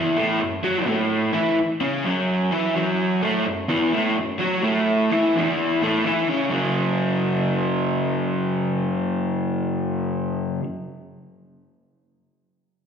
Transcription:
Already playing: overdriven electric guitar E2 E3
0.16 overdriven electric guitar A2 A3
0.39 overdriven electric guitar F#2
0.63 overdriven electric guitar F#3 F#4
0.86 overdriven electric guitar A2 A3
1.33 overdriven electric guitar E3 E4
1.58 muted overdriven electric guitar stroke
1.80 overdriven electric guitar C#3 C#4
2.04 overdriven electric guitar F#2 F#3
2.51 overdriven electric guitar E3 E4
2.74 overdriven electric guitar F#2 F#3
3.21 overdriven electric guitar A2 A3
3.45 overdriven electric guitar F#2
3.68 overdriven electric guitar E2 E3
3.93 overdriven electric guitar A2 A3
4.15 overdriven electric guitar F#2
4.38 overdriven electric guitar F#3 F#4
4.63 overdriven electric guitar A2 A3
5.11 overdriven electric guitar E3 E4
5.36 overdriven electric guitar E2 E3
5.82 overdriven electric guitar A2 A3
6.05 overdriven electric guitar E3 E4
6.29 overdriven electric guitar C#3 C#4
6.49 overdriven electric guitar F#2 C#3 F#3

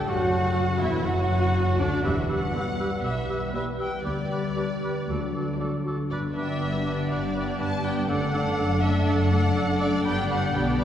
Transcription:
Already playing: harp G2 D3 B3 D4, flute G5
0.07 double bass section F#1, harp F#2, cello section F#2, french horn section F#3, viola section F#4, oboe F#4, clarinet F#4, violin section F#4 F#5, flute F#5
0.25 harp F#3
0.41 harp D4
0.58 harp A4
0.73 harp D4
0.80 double bass section E1, cello section E2, french horn section E3, viola section E4, clarinet E4, oboe E4, violin section E4 E5, flute E5
0.90 harp F#3
1.05 double bass section F#1, harp F#2, cello section F#2, french horn section F#3, violin section F#4 F#5, clarinet F#4, viola section F#4, oboe F#4, flute F#5
1.22 harp A3
1.38 harp D4
1.55 harp A4
1.71 harp D4
1.79 double bass section D2, cello section D2, french horn section D3, viola section D4, clarinet D4, violin section D4 D5, oboe D4, flute D5
1.87 harp F#3
2.04 double bass section E1, cello section E2, harp E3, french horn section G3 B3, clarinet G4, oboe B4, violin section E5, flute E6
2.21 harp G3
2.29 clarinet G4, oboe B4, violin section F#5, flute E6
2.38 harp B4
2.54 viola section G3 B3, violin section E4 B4, clarinet G4, harp G4, oboe B4, flute E6
2.71 harp B4
2.79 clarinet G4, oboe B4, flute E6
2.88 harp G3
3.04 double bass section B1, cello section B2, harp E3, clarinet G4, oboe B4, violin section E5, flute E6
3.21 harp B3
3.30 clarinet G4, oboe B4, flute E6
3.38 harp B4
3.54 viola section G3 B3, violin section E4 B4 E5, clarinet G4, harp G4, oboe B4, flute E6
3.71 harp B4
3.79 clarinet G4, oboe B4, violin section G5, flute E6
3.89 harp G3
4.05 cello section D2, double bass section D2, harp D3, clarinet G4, oboe B4, violin section D5, flute D6
4.23 harp G3
4.32 clarinet G4, oboe B4, flute D6
4.40 harp B4
4.57 viola section G3 D4, clarinet G4, harp G4, violin section G4 B4, oboe B4, flute D6
4.75 harp B4
4.83 clarinet G4, oboe B4, flute D6
4.92 harp G3
5.09 double bass section D2, cello section D2, harp D3, french horn section F#3 D4, clarinet F#4, oboe A4, flute D6
5.26 harp F#3
5.34 clarinet F#4, oboe A4, flute D6
5.43 harp A4
5.59 viola section A3 D4, harp F#4, clarinet F#4, violin section F#4 D5, oboe A4, flute D6
5.77 harp A4
5.85 clarinet F#4, oboe A4, flute D6
5.94 harp F#3
6.10 double bass section G1, cello section G2, harp G2, french horn section B3, clarinet D4, oboe B4, violin section D5, flute D6
6.27 harp D3
6.36 viola section B3 D4, clarinet D4, violin section G4 D5 E5, oboe B4, flute D6
6.61 double bass section G1, cello section G2, clarinet D4, harp B4, oboe B4, flute D6
6.78 harp D4
6.86 viola section B3 D4, clarinet D4, violin section G4 D5, oboe B4, flute D6
6.95 harp D3
7.10 double bass section G1, harp G2, cello section G2, clarinet D4, oboe B4, violin section D5, flute D6
7.28 harp G3
7.35 viola section B3 D4, clarinet D4, violin section G4 D5, oboe B4, flute D6
7.44 harp D4
7.60 double bass section G1, cello section G2, clarinet D4, oboe B4, harp B4, violin section A5, flute D6
7.76 harp D4
7.84 viola section B3 D4, clarinet D4, violin section G4 D5 G5, oboe B4, flute D6
8.09 double bass section F#1, cello section F#2, harp F#2, viola section A3 D4, french horn section A3 D4, clarinet D4, oboe A4, violin section A4 D5 F#5, flute D6
8.26 harp F#3
8.34 viola section A3 D4, clarinet D4, oboe A4, violin section A4 D5, flute D6
8.42 harp D4
8.58 double bass section F#1, cello section F#2, clarinet D4, oboe A4, harp A4, flute D6
8.83 viola section A3 D4, clarinet D4, violin section A4 D5 E5, oboe A4, flute D6
8.91 harp F#3
9.06 double bass section F#1, cello section F#2, harp F#2, clarinet D4, oboe A4, violin section F#5, flute D6
9.24 harp A3
9.31 viola section A3 D4, clarinet D4, violin section A4 D5, oboe A4, flute D6
9.55 double bass section F#1, cello section F#2, clarinet D4, harp A4, oboe A4, flute D6
9.73 harp D4
9.80 viola section A3 D4, clarinet D4, oboe A4, violin section A4 D5, flute D6
9.89 harp F#3
10.05 double bass section G1, cello section G2, harp G2, viola section B3 D4, french horn section B3 D4, clarinet D4, violin section G4 D5 G5, oboe G4, flute B5
10.22 harp D3
10.30 clarinet D4, oboe G4, violin section F#5, flute B5
10.38 harp D4
10.54 double bass section B1, cello section B2, viola section B3 D4, french horn section B3 D4, clarinet D4, violin section G4 D5 G5, oboe G4, flute B5
10.78 clarinet D4, oboe G4, violin section D5, flute B5

